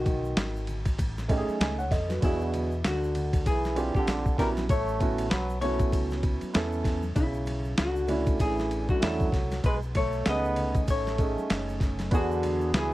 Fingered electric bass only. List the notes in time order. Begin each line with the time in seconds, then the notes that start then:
Already playing: B1
0.36 G#1
0.98 A1
1.48 muted fingered electric bass stroke
1.60 C#2
1.91 F2
2.23 E2
2.85 D2
3.47 B1
4.07 A#1
4.38 A#1
4.69 A1
5.32 B1
5.93 C#2
6.42 muted fingered electric bass stroke
6.55 E2
7.16 B1
7.79 C#2
8.40 A1
9.03 E2
9.32 C2
9.64 B1
10.27 C#2
10.88 A1
11.38 muted fingered electric bass stroke
11.50 F#1
12.12 E2
12.73 C#2